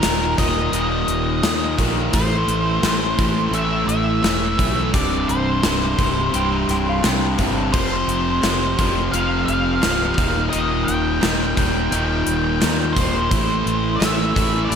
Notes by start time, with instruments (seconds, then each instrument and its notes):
Already playing: lead electric guitar A#4
0.02 fingered electric bass D#1, distorted electric guitar D#2 A#2 D#3, snare, clap, closed hi-hat
0.36 fingered electric bass D#1, distorted electric guitar D#2 A#2 D#3, lead electric guitar D#5, kick, closed hi-hat
0.72 fingered electric bass D#1, distorted electric guitar D#2 A#2 D#3, closed hi-hat
1.08 fingered electric bass D#1, closed hi-hat
1.43 fingered electric bass D#2, distorted electric guitar D#2 A#2 D#3, snare, clap, closed hi-hat
1.78 fingered electric bass A#1, distorted electric guitar D#2 A#2 D#3, kick, closed hi-hat
2.13 fingered electric bass A1, distorted electric guitar A2 E3 A3, lead electric guitar C5, kick, closed hi-hat
2.48 fingered electric bass A1, closed hi-hat
2.82 fingered electric bass A1, distorted electric guitar A2 E3 A3, snare, clap, closed hi-hat
3.17 fingered electric bass A1, distorted electric guitar A2 E3 A3, kick, closed hi-hat
3.51 fingered electric bass A1, distorted electric guitar A2 E3 A3, lead electric guitar E5, closed hi-hat
3.87 fingered electric bass A1, lead electric guitar E5, closed hi-hat
4.23 fingered electric bass E1, distorted electric guitar A2 E3 A3, snare, clap, closed hi-hat
4.58 fingered electric bass B1, distorted electric guitar A2 E3 A3, kick, closed hi-hat
4.93 fingered electric bass C1, distorted electric guitar C2 G2 C3, lead electric guitar D5, kick, closed hi-hat
5.28 fingered electric bass C1, lead electric guitar C5, closed hi-hat
5.63 fingered electric bass C1, distorted electric guitar C2 G2 C3, snare, clap, closed hi-hat
5.98 fingered electric bass C1, distorted electric guitar C2 G2 C3, kick, closed hi-hat
6.33 fingered electric bass C1, distorted electric guitar C2 G2 C3, electric slide guitar G5, closed hi-hat
6.54 electric slide guitar A#5
6.68 fingered electric bass C1, electric slide guitar G5, snare, closed hi-hat
6.89 electric slide guitar F5
7.04 distorted electric guitar C2 G2 C3, fingered electric bass C2, electric slide guitar G5, snare, clap, closed hi-hat
7.38 fingered electric bass G1, distorted electric guitar C2 G2 C3, electric slide guitar A5, kick, closed hi-hat
7.72 fingered electric bass F1, distorted electric guitar F2 C3 F3, lead electric guitar C5, kick, crash
8.08 fingered electric bass F1, closed hi-hat
8.43 fingered electric bass F1, distorted electric guitar F2 C3 F3, snare, clap, closed hi-hat
8.78 fingered electric bass F1, distorted electric guitar F2 C3 F3, kick, closed hi-hat
9.12 fingered electric bass F1, distorted electric guitar F2 C3 F3, lead electric guitar F5, closed hi-hat
9.46 fingered electric bass F1, lead electric guitar F5, closed hi-hat
9.82 fingered electric bass C1, distorted electric guitar F2 C3 F3, snare, clap, closed hi-hat
10.17 fingered electric bass D#1, distorted electric guitar D#2 A#2 D#3, kick, closed hi-hat
10.50 distorted electric guitar D#2 A#2 D#3, lead electric guitar D#5, closed hi-hat
10.54 fingered electric bass D#1
10.84 lead electric guitar G5, closed hi-hat
10.88 fingered electric bass D#1
11.22 fingered electric bass D#1, distorted electric guitar D#2 A#2 D#3, snare, clap, closed hi-hat
11.57 fingered electric bass D#1, distorted electric guitar D#2 A#2 D#3, kick, closed hi-hat
11.92 fingered electric bass D#1, distorted electric guitar D#2 A#2 D#3, closed hi-hat
12.27 fingered electric bass D#1, closed hi-hat
12.62 distorted electric guitar D#2 A#2 D#3, fingered electric bass D#2, snare, clap, closed hi-hat
12.93 fingered electric bass D#1, distorted electric guitar D#2 A#2 D#3, lead electric guitar C5, kick
12.97 closed hi-hat
13.31 fingered electric bass A1, distorted electric guitar A2 E3 A3, kick, closed hi-hat
13.66 fingered electric bass A1, closed hi-hat
13.96 lead electric guitar E5
14.01 fingered electric bass A1, distorted electric guitar A2 E3 A3, snare, clap, closed hi-hat
14.36 fingered electric bass A1, distorted electric guitar A2 E3 A3, kick, closed hi-hat
14.65 distorted electric guitar A2, lead electric guitar D5
14.70 fingered electric bass A1, distorted electric guitar E3 A3, closed hi-hat